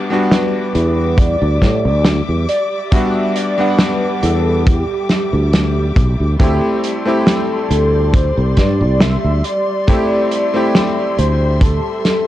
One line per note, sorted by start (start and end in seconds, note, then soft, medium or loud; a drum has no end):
0.00 0.10 G3 medium
0.00 12.27 G3 medium
0.00 0.11 B3 medium
0.00 0.12 D4 medium
0.00 0.13 F#4 loud
0.00 6.36 E5 medium
0.00 6.36 D6 medium
0.10 2.87 G3 medium
0.10 2.87 B3 medium
0.10 2.88 D4 medium
0.10 2.88 F#4 medium
0.31 1.20 B4 medium
0.31 snare loud
0.31 closed hi-hat medium
0.75 1.35 E2 medium
0.75 closed hi-hat medium
1.18 2.05 D5 loud
1.18 kick loud
1.18 closed hi-hat medium
1.42 1.58 D2 loud
1.62 1.86 A2 medium
1.62 kick medium
1.62 snare medium
1.62 closed hi-hat medium
1.85 2.20 D2 loud
2.05 snare loud
2.05 closed hi-hat medium
2.29 2.45 E2 medium
2.49 2.94 D5 loud
2.49 closed hi-hat medium
2.92 3.53 G3 medium
2.92 3.54 B3 medium
2.92 3.54 D4 medium
2.92 3.54 F#4 loud
2.92 3.35 E5 loud
2.92 kick loud
2.92 closed hi-hat medium
3.36 3.81 D5 loud
3.36 closed hi-hat medium
3.58 6.35 G3 medium
3.58 6.35 B3 medium
3.58 6.36 D4 medium
3.58 6.36 F#5 loud
3.79 4.22 B4 loud
3.79 snare loud
3.79 closed hi-hat loud
4.22 4.83 E2 medium
4.22 4.68 A4 medium
4.22 closed hi-hat medium
4.66 5.53 G4 medium
4.66 kick loud
4.66 closed hi-hat medium
5.09 snare medium
5.09 closed hi-hat medium
5.33 5.91 D2 medium
5.53 snare loud
5.53 closed hi-hat medium
5.96 6.15 B1 medium
5.96 kick loud
5.96 closed hi-hat medium
6.20 6.36 D2 medium
6.39 6.59 D2 medium
6.39 7.01 A3 medium
6.39 7.01 C4 medium
6.39 7.01 E4 medium
6.39 7.02 G4 loud
6.39 9.84 D5 medium
6.39 12.27 C6 medium
6.39 kick loud
6.39 closed hi-hat medium
6.84 closed hi-hat medium
7.05 9.82 A3 medium
7.05 9.83 C4 medium
7.05 9.83 E4 medium
7.05 9.84 G4 loud
7.27 8.16 A4 loud
7.27 snare loud
7.27 closed hi-hat medium
7.70 8.30 D2 medium
7.70 closed hi-hat medium
8.14 8.59 C5 loud
8.14 kick loud
8.14 closed hi-hat medium
8.37 8.54 C2 loud
8.57 8.82 G2 medium
8.57 9.03 D5 loud
8.57 kick medium
8.57 snare medium
8.57 closed hi-hat medium
8.81 9.16 C2 loud
9.00 9.46 E5 loud
9.00 snare loud
9.00 closed hi-hat medium
9.24 9.41 D2 medium
9.44 11.18 D5 loud
9.44 closed hi-hat medium
9.87 10.49 A3 loud
9.87 10.49 C4 medium
9.87 10.49 E4 medium
9.87 10.50 G4 loud
9.87 12.27 E5 medium
9.87 kick loud
9.87 closed hi-hat medium
10.31 closed hi-hat medium
10.54 12.27 A3 medium
10.54 12.27 C4 medium
10.54 12.27 E4 medium
10.54 12.27 G4 loud
10.75 snare loud
10.75 closed hi-hat medium
11.18 11.78 D2 medium
11.18 11.59 C5 loud
11.18 closed hi-hat medium
11.61 12.27 A4 medium
11.61 kick loud
11.61 closed hi-hat medium
12.05 snare medium
12.05 closed hi-hat medium